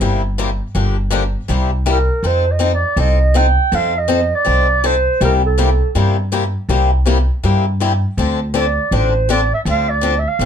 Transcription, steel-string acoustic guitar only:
0.01 C3 G3 A#3 E4 G4
0.38 C3 G3 A#3 E4 G4
0.75 D3 F3 A#3 D4 G4
1.10 D3 F3 A#3 D4 G4
1.48 C3 G3 A#3 E4 G4
1.86 C3 G3 A#3 E4 G4
2.24 F3 C4 D#4 A4
2.59 F3 C4 D#4 A4
2.97 F3 C4 D#4 A4
3.34 F3 C4 D#4 A4
3.72 F3 C4 D#4 A4
4.08 F3 C4 D#4 A4
4.45 F3 C4 D#4 A4
4.84 F3 C4 D#4 A4
5.21 C3 G3 A#3 E4 G4
5.58 C3 G3 A#3 E4 G4
5.95 C3 G3 A#3 E4 G4
6.32 C3 G3 A#3 E4 G4
6.69 C3 G3 A#3 E4 G4
7.05 C3 G3 A#3 E4 G4
7.43 C3 G3 A#3 E4 G4
7.80 C3 G3 A#3 E4 G4
8.18 D3 F3 C4 D4 A4
8.54 D3 F3 C4 D4 A4
8.92 D3 F3 C4 D4 A4
9.29 D3 F3 C4 D4 A4
9.66 D3 F3 C4 D4 A4
10.01 D3 F3 C4 D4 A4
10.39 D3 F3 C4 D4 A4

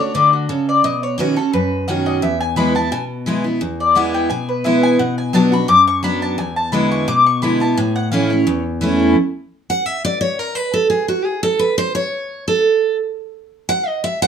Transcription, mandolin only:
0.00 C#5
0.14 D5
0.33 F#4
0.49 A4
0.69 D5
0.84 D#5
1.03 C#5
1.19 B4
1.37 A4
1.53 B4
1.88 F#5
2.06 D#5
2.23 E5
2.41 G#5
2.57 B5
2.76 A5
2.92 G#5
3.80 D5
3.96 F#5
4.14 G5
4.30 G#5
4.49 B4
4.65 E5
4.83 G#5
4.99 F#5
5.18 G#5
5.35 A5
5.53 B5
5.69 D6
5.87 C#6
6.04 B5
6.22 A5
6.39 G#5
6.56 A5
6.72 B5
6.92 C#6
7.08 D6
7.26 C#6
7.43 B5
7.61 A5
7.78 G#5
7.96 F#5
8.12 F5
8.30 C#5

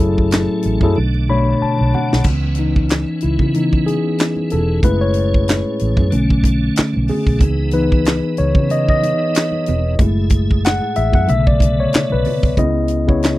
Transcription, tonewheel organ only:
Already playing: A2 A3 C#4
0.96 D3 A3 D4
2.24 E3 B3 C#4
4.84 A2 G#4
6.11 D3 A3 C#4
7.39 E3 B3 D#4
9.99 A2 E4 G#4
11.27 B2 A3 B3

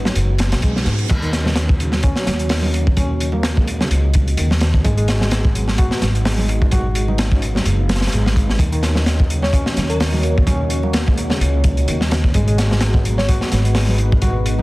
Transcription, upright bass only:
Already playing: G#1
0.16 F#1
0.52 B1
0.86 G#2
1.10 D#2
2.26 D#2
3.90 C#2
4.37 D#2
4.85 G#1
6.02 G#1
7.66 F#1
8.12 G#1
8.59 D#2
9.76 D#2
11.40 C#2
11.88 D#2
12.34 G#1
13.52 G#1

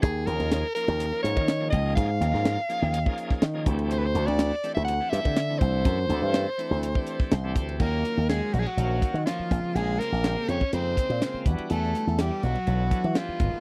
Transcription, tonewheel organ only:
0.27 F3 A#3 C#4 D#4 G#4
0.76 F3 A#3 C#4 D#4 A#4
1.12 F3 A#3 C#4 D#4 A#4
1.60 F3 A#3 C#4 D#4 G#4
2.21 F3 A#3 C#4 D#4 A#4
2.69 F3 A#3 C#4 D#4 G#4
3.06 F3 A#3 C#4 D#4 G#4
3.54 F3 A#3 C#4 D#4 G#4
3.67 E3 A3 C4 D4 G4
4.15 E3 A3 C4 D4 F#4
4.64 E3 A3 C4 D4 G4
5.00 E3 A3 C4 D4 G4
5.49 E3 A3 C4 D4 E4
6.09 E3 A3 C4 D4 A4
6.58 E3 A3 C4 D4 E4
6.95 E3 A3 C4 D4 G4
7.31 C5
7.44 E3 A3 C4 D4 G4
7.80 D#3 F#3 A#3 C#4 F4
8.29 D#3 F#3 A#3 C#4 F4
8.77 D#3 F#3 A#3 C#4 F5
9.26 D#3 F#3 A#3 C#4 F4
9.51 C#3 G#3 A#3 C4 F4
10.24 C#3 G#3 A#3 C4 G4
10.73 C#3 G#3 A#3 C4 D#4
11.21 C#3 G#3 A#3 C4 F4
11.46 E3 G3 B3 D4 F#4
12.18 E3 G3 B3 D4 A4
12.66 E3 F#3 B3 D4 A4
13.15 E3 G3 B3 D4 G4
13.39 D#3 G#3 A#3 B3 F#4

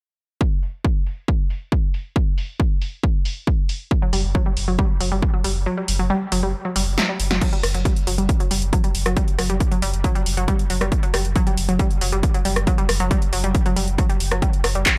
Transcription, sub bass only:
4.13 F#1
4.24 F#1
4.57 F#1
4.68 F#1
5.01 F#1
5.12 F#1
5.45 F#1
5.56 F#1
5.88 F#1
5.99 F#1
6.32 F#1
6.43 F#1
6.76 F#1
6.87 F#1
7.19 F#1
7.31 F#1
7.63 F#1
7.74 F#1
8.07 F#1
8.18 F#1
8.51 F#1
8.62 F#1
8.95 F#1
9.06 F#1
9.39 F#1
9.50 F#1
9.82 F#1
9.94 F#1
10.26 F#1
10.37 F#1
10.70 F#1
10.81 F#1
11.14 F#1
11.25 F#1
11.57 F#1
11.69 F#1
12.01 F#1
12.13 F#1
12.45 F#1
12.56 F#1
12.89 F#1
13.00 F#1
13.33 F#1
13.44 F#1
13.77 F#1
13.88 F#1
14.20 F#1
14.31 F#1
14.64 F#1
14.75 F#1

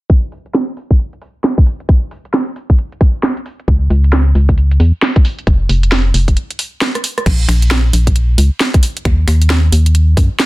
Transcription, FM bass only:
3.68 C#2
3.90 C#2
4.35 C#2
4.80 E2
5.47 F1
5.69 F1
6.14 F1
7.26 A#1
7.48 A#1
7.93 A#1
8.38 C#2
9.05 D#2
9.28 D#2
9.72 D#2
10.17 F#2

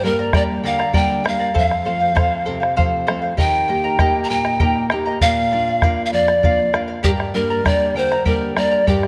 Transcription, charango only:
0.03 A#4 D5 G5 A#5
0.19 A#4 D5 A#5
0.34 G4 A#4 D5 G5 A#5
0.64 A#4 D5 G5 A#5
0.78 A#4 D5 A#5
0.93 G4 A#4 D5 G5 A#5
1.24 A#4 D5 G5 A#5
1.39 A#4 D5 A#5
1.54 A4 C5 F5
1.85 A4 C5 F5
2.00 C5 F5
2.15 A4 C5 F5
2.45 A4 C5 F5
2.60 C5 F5
2.76 A4 C5 F5
3.07 A4 C5 F5
3.22 C5 F5
3.37 G4 A#4 D#5 G5 A#5
3.68 A#4 D#5 G5 A#5
3.84 A#4 D#5 A#5
3.99 G4 A#4 D#5 G5 A#5
4.29 A#4 D#5 G5 A#5
4.45 A#4 D#5 A#5
4.60 G4 A#4 D#5 G5 A#5
4.91 A#4 D#5 G5 A#5
5.06 A#4 D#5 A#5
5.21 A#4 D5 F5
5.52 A#4 D5 F5
5.67 D5 F5
5.83 A#4 D5 F5
6.13 A#4 D5 F5
6.28 D5 F5
6.43 A#4 D5 F5
6.73 A#4 D5 F5
6.88 D5 F5
7.03 G4 A#4 D5 G5 A#5
7.35 A#4 D5 G5 A#5
7.50 A#4 D5 A#5
7.65 G4 A#4 D5 G5 A#5
7.96 A#4 D5 G5 A#5
8.11 A#4 D5 A#5
8.25 G4 A#4 D5 G5 A#5
8.56 A#4 D5 G5 A#5
8.71 A#4 D5 A#5
8.87 G4 A#4 D5 G5 A#5

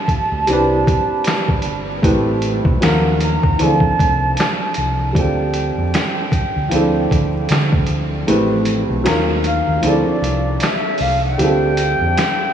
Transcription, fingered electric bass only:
0.32 D2
0.48 C2
1.65 G1
2.04 A1
2.66 B1
2.83 D#2
3.44 D#2
3.61 D2
3.81 muted fingered electric bass stroke
4.00 C2
4.78 C2
5.16 D2
5.78 F2
6.56 D2
6.72 D2
7.12 D2
7.50 D3
7.89 D2
8.28 A1
8.90 B1
9.06 D#2
9.67 D#2
9.83 D2
10.22 C2
11.00 C2
11.39 D2
12.01 F2

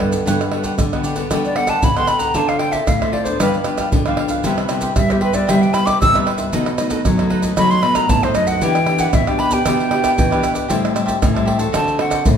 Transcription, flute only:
1.45 D5
1.56 F#5
1.69 A5
1.84 B5
1.97 C6
2.08 B5
2.19 A#5
2.35 A5
2.48 F5
2.59 G5
2.72 E5
2.87 F5
3.01 E5
3.13 D5
3.25 C5
3.41 B4
4.97 E5
5.12 G4
5.22 B4
5.35 D5
5.49 E5
5.62 G5
5.74 B5
5.86 D6
6.01 E6
7.57 B5
7.71 C6
7.82 B5
7.95 A#5
8.10 A5
8.24 C5
8.35 D#5
8.47 F#5
8.63 G5
9.00 F#5
9.14 E5
9.28 G5
9.39 B5
9.53 G5
11.75 A5
12.00 F#5

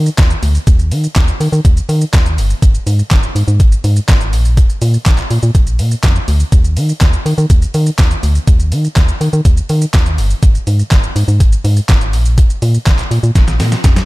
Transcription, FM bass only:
0.18 D#2
0.43 D2
0.67 D#2
0.92 D#3
1.16 D#2
1.40 D#3
1.52 D#3
1.65 D#2
1.89 D#3
2.14 D#2
2.38 G1
2.62 G#1
2.87 G#2
3.11 G#1
3.35 G#2
3.48 G#2
3.60 G#1
3.84 G#2
4.09 G#1
4.33 A#1
4.82 A#2
5.06 A#1
5.31 A#2
5.43 A#2
5.55 A#1
5.79 A#2
6.04 F2
6.28 D2
6.52 D#2
6.77 D#3
7.01 D#2
7.26 D#3
7.38 D#3
7.50 D#2
7.75 D#3
7.99 D#2
8.23 D2
8.48 D#2
8.72 D#3
8.97 D#2
9.21 D#3
9.33 D#3
9.45 D#2
9.70 D#3
9.94 D#2
10.18 G1
10.43 G#1
10.67 G#2
10.92 G#1
11.16 G#2
11.28 G#2
11.40 G#1
11.64 G#2
11.89 G#1
12.13 A#1
12.62 A#2
12.87 A#1
13.11 A#2
13.23 A#2
13.36 A#1
13.60 A#2
13.84 F2

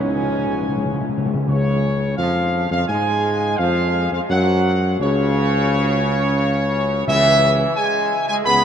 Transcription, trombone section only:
0.00 F3 G#3
1.47 C#3
2.19 F3
2.70 F3
2.88 G#3
3.59 F3
4.13 F3
4.30 F#3
5.00 C#3
7.07 E3
7.76 G#3
8.28 G#3
8.45 B3

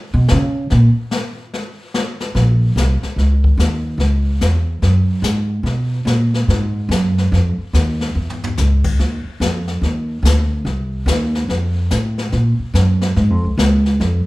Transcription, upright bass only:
0.14 B2
0.31 C#3
0.71 A#2
2.35 A#1
2.76 C2
3.03 muted upright bass stroke
3.16 C#2
3.58 D#2
3.98 C#2
4.41 E2
4.82 F#2
5.22 G#2
5.63 B2
6.05 A#2
6.48 G#2
6.89 F#2
7.32 F2
7.58 muted upright bass stroke
7.73 D#2
8.15 E2
8.58 C#2
8.99 D#2
9.26 muted upright bass stroke
9.40 F2
9.81 D#2
10.23 D2
10.65 C2
11.06 D#2
11.48 F2
11.92 A2
12.33 A#2
12.59 muted upright bass stroke
12.74 F#2
13.16 G#2
13.30 F2
13.44 C#2
13.58 C#2
14.00 F2

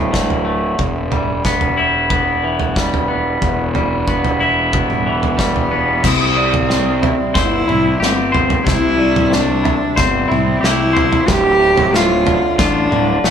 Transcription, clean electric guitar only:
Already playing: A2 D3 A3 E4
0.12 D3
0.45 A3
0.79 E2
1.12 G3
1.45 B3
1.77 E4
2.10 B3
2.44 E3
2.76 G3
3.08 B3
3.42 E2
3.75 G3
4.08 B3
4.40 E4
4.73 B3
5.06 E3
5.37 G3
5.71 B3
6.03 C3
6.37 G3
6.69 C4
7.02 E4
7.34 C5
7.68 E4
8.00 G4
8.32 C5
8.64 C3
8.98 G3
9.30 C4
9.63 E4
9.96 C5
10.28 E4
10.61 G4
10.93 C5
11.27 D2
11.59 A2
11.93 A2
12.26 D3
12.58 F4
12.91 D3
13.25 A3

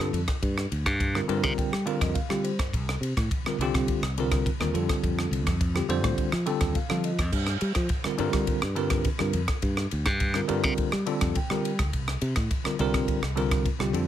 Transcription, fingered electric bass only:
0.00 G2
0.13 F2
0.42 G2
0.72 D2
0.86 G2
1.29 G2
1.43 C3
1.72 G3
2.01 F2
2.30 G3
2.59 G2
2.74 C2
3.01 C3
3.17 A2
3.44 muted fingered electric bass stroke
3.58 C2
3.74 C3
4.02 C2
4.60 D#2
4.74 F2
5.03 F2
5.31 C2
5.46 F2
5.88 F2
6.04 A2
6.33 F3
6.61 D#2
6.91 F3
7.18 F2
7.32 G2
7.62 G3
7.76 F3
8.05 muted fingered electric bass stroke
8.19 G2
8.33 G3
8.63 G2
9.20 G2
9.34 F2
9.63 G2
9.92 D2
10.06 G2
10.49 G2
10.64 C3
10.93 G3
11.21 F2
11.50 G3
11.79 D2
11.93 C2
12.22 C3
12.37 A2
12.66 muted fingered electric bass stroke
12.79 C2
12.94 C3
13.22 C2
13.80 C2
13.93 F2

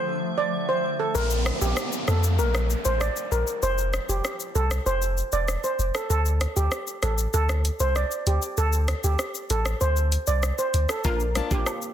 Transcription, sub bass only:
1.15 A#1
1.62 A#1
2.08 F2
2.39 A#1
2.86 A1
3.32 A#1
3.63 F1
4.09 F1
4.55 C2
4.86 F1
5.33 E1
5.79 F1
6.10 D2
6.57 D2
7.03 A1
7.34 D2
7.80 C2
8.27 D2
8.58 D2
9.04 D2
9.50 A1
9.81 D2
10.28 C2
10.74 D2
11.05 A#1
11.51 A#1

